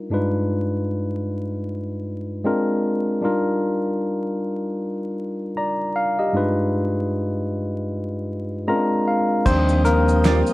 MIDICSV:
0, 0, Header, 1, 6, 480
1, 0, Start_track
1, 0, Key_signature, -3, "major"
1, 0, Tempo, 779221
1, 67, Time_signature, 4, 2, 24, 8
1, 6489, End_track
2, 0, Start_track
2, 0, Title_t, "Tonewheel organ"
2, 0, Program_c, 0, 16
2, 5828, Note_on_c, 0, 77, 55
2, 5829, Note_on_c, 0, 87, 60
2, 5830, Note_on_c, 0, 62, 57
2, 5831, Note_on_c, 0, 79, 55
2, 6489, Note_off_c, 0, 62, 0
2, 6489, Note_off_c, 0, 77, 0
2, 6489, Note_off_c, 0, 79, 0
2, 6489, Note_off_c, 0, 87, 0
2, 6489, End_track
3, 0, Start_track
3, 0, Title_t, "Hollow-body jazz guitar"
3, 0, Program_c, 1, 26
3, 6313, Note_on_c, 1, 58, 73
3, 6316, Note_on_c, 1, 65, 65
3, 6321, Note_on_c, 1, 67, 66
3, 6323, Note_on_c, 1, 74, 72
3, 6411, Note_off_c, 1, 58, 0
3, 6412, Note_off_c, 1, 65, 0
3, 6415, Note_off_c, 1, 67, 0
3, 6416, Note_off_c, 1, 74, 0
3, 6489, End_track
4, 0, Start_track
4, 0, Title_t, "Tine electric piano"
4, 0, Program_c, 2, 4
4, 0, Control_c, 2, 64, 127
4, 61, Note_on_c, 2, 43, 52
4, 67, Note_on_c, 2, 56, 45
4, 71, Note_on_c, 2, 62, 48
4, 75, Control_c, 2, 64, 0
4, 76, Note_on_c, 2, 63, 43
4, 81, Note_on_c, 2, 65, 47
4, 86, Note_on_c, 2, 71, 54
4, 179, Control_c, 2, 64, 127
4, 1480, Note_off_c, 2, 43, 0
4, 1482, Note_off_c, 2, 56, 0
4, 1484, Note_off_c, 2, 62, 0
4, 1487, Note_off_c, 2, 63, 0
4, 1489, Note_off_c, 2, 65, 0
4, 1492, Note_off_c, 2, 71, 0
4, 1506, Note_on_c, 2, 56, 56
4, 1509, Note_on_c, 2, 60, 57
4, 1513, Note_on_c, 2, 62, 52
4, 1515, Control_c, 2, 64, 0
4, 1515, Note_on_c, 2, 65, 51
4, 1519, Note_on_c, 2, 70, 66
4, 1613, Control_c, 2, 64, 127
4, 1976, Note_off_c, 2, 62, 0
4, 1979, Note_on_c, 2, 55, 52
4, 1984, Note_on_c, 2, 62, 45
4, 1986, Note_off_c, 2, 56, 0
4, 1987, Note_off_c, 2, 65, 0
4, 1988, Note_off_c, 2, 60, 0
4, 1990, Note_on_c, 2, 63, 44
4, 1993, Note_off_c, 2, 70, 0
4, 1995, Note_on_c, 2, 65, 53
4, 1996, Control_c, 2, 64, 0
4, 2002, Note_on_c, 2, 70, 55
4, 2093, Control_c, 2, 64, 127
4, 3410, Note_off_c, 2, 70, 0
4, 3432, Note_on_c, 2, 82, 53
4, 3435, Note_on_c, 2, 74, 41
4, 3657, Note_off_c, 2, 82, 0
4, 3659, Note_off_c, 2, 74, 0
4, 3670, Note_on_c, 2, 77, 61
4, 3801, Note_off_c, 2, 77, 0
4, 3812, Note_on_c, 2, 75, 50
4, 3815, Note_on_c, 2, 67, 46
4, 3878, Note_off_c, 2, 55, 0
4, 3881, Note_off_c, 2, 62, 0
4, 3884, Note_off_c, 2, 63, 0
4, 3886, Note_off_c, 2, 65, 0
4, 3899, Note_on_c, 2, 43, 53
4, 3903, Note_on_c, 2, 56, 49
4, 3907, Note_on_c, 2, 62, 52
4, 3911, Note_on_c, 2, 63, 48
4, 3916, Control_c, 2, 64, 0
4, 3917, Note_on_c, 2, 65, 48
4, 3922, Note_on_c, 2, 71, 61
4, 4011, Control_c, 2, 64, 127
4, 4038, Note_off_c, 2, 75, 0
4, 4039, Note_off_c, 2, 67, 0
4, 5318, Note_off_c, 2, 43, 0
4, 5320, Note_off_c, 2, 56, 0
4, 5322, Note_off_c, 2, 62, 0
4, 5324, Note_off_c, 2, 63, 0
4, 5327, Note_off_c, 2, 65, 0
4, 5330, Note_off_c, 2, 71, 0
4, 5343, Note_on_c, 2, 56, 59
4, 5344, Note_on_c, 2, 60, 53
4, 5347, Note_on_c, 2, 82, 60
4, 5349, Note_on_c, 2, 61, 45
4, 5352, Note_on_c, 2, 65, 53
4, 5354, Control_c, 2, 64, 0
4, 5355, Note_on_c, 2, 70, 60
4, 5388, Note_on_c, 2, 62, 55
4, 5394, Note_off_c, 2, 61, 0
4, 5483, Control_c, 2, 64, 127
4, 5570, Note_off_c, 2, 82, 0
4, 5591, Note_on_c, 2, 77, 58
4, 5812, Note_off_c, 2, 77, 0
4, 5825, Note_off_c, 2, 56, 0
4, 5825, Note_on_c, 2, 72, 87
4, 5826, Note_off_c, 2, 60, 0
4, 5826, Note_off_c, 2, 62, 0
4, 5827, Note_on_c, 2, 53, 50
4, 5829, Note_off_c, 2, 65, 0
4, 5830, Note_on_c, 2, 55, 40
4, 5831, Note_off_c, 2, 70, 0
4, 5833, Control_c, 2, 64, 0
4, 5834, Note_on_c, 2, 62, 51
4, 5835, Note_on_c, 2, 60, 71
4, 5942, Control_c, 2, 64, 127
4, 6055, Note_off_c, 2, 60, 0
4, 6066, Note_on_c, 2, 70, 91
4, 6073, Note_off_c, 2, 72, 0
4, 6076, Note_on_c, 2, 58, 71
4, 6161, Note_off_c, 2, 53, 0
4, 6163, Note_off_c, 2, 55, 0
4, 6165, Note_off_c, 2, 62, 0
4, 6489, Note_off_c, 2, 58, 0
4, 6489, Note_off_c, 2, 70, 0
4, 6489, End_track
5, 0, Start_track
5, 0, Title_t, "Analog synth bass"
5, 0, Program_c, 3, 38
5, 5833, Note_on_c, 3, 39, 102
5, 6425, Note_off_c, 3, 39, 0
5, 6489, End_track
6, 0, Start_track
6, 0, Title_t, "Drums"
6, 5827, Note_on_c, 9, 36, 96
6, 5827, Note_on_c, 9, 49, 82
6, 5830, Note_on_c, 9, 82, 61
6, 5888, Note_off_c, 9, 36, 0
6, 5889, Note_off_c, 9, 49, 0
6, 5892, Note_off_c, 9, 82, 0
6, 5967, Note_on_c, 9, 82, 46
6, 6029, Note_off_c, 9, 82, 0
6, 6068, Note_on_c, 9, 82, 46
6, 6073, Note_on_c, 9, 42, 67
6, 6129, Note_off_c, 9, 82, 0
6, 6135, Note_off_c, 9, 42, 0
6, 6212, Note_on_c, 9, 82, 42
6, 6273, Note_off_c, 9, 82, 0
6, 6309, Note_on_c, 9, 26, 58
6, 6309, Note_on_c, 9, 82, 59
6, 6310, Note_on_c, 9, 42, 78
6, 6317, Note_on_c, 9, 38, 106
6, 6321, Note_off_c, 9, 26, 0
6, 6321, Note_on_c, 9, 26, 75
6, 6371, Note_off_c, 9, 82, 0
6, 6372, Note_off_c, 9, 42, 0
6, 6378, Note_off_c, 9, 38, 0
6, 6383, Note_off_c, 9, 26, 0
6, 6447, Note_on_c, 9, 82, 44
6, 6489, Note_off_c, 9, 82, 0
6, 6489, End_track
0, 0, End_of_file